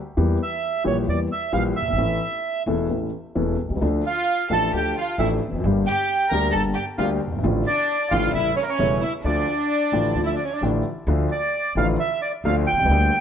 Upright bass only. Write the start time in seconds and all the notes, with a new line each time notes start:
0.17 E2
0.85 A#1
1.08 E2
1.53 A#1
1.81 F#1
1.87 G1
1.93 G#1
1.98 A1
2.66 E1
2.89 A1
3.36 E1
3.64 B1
3.70 C2
3.75 C#2
3.81 D2
4.50 A1
4.73 D2
5.18 A1
5.46 E1
5.52 F1
5.58 F#1
5.64 G1
6.31 D2
6.54 G1
6.98 D2
7.27 F#1
7.33 G1
7.39 G#1
7.44 A1
8.11 A1
8.34 A1
8.79 E1
9.24 D2
9.92 A1
10.15 D2
10.61 A1
11.07 D2
11.75 A1
12.44 D2
12.72 B1
12.78 C2
12.84 C#2
12.89 D2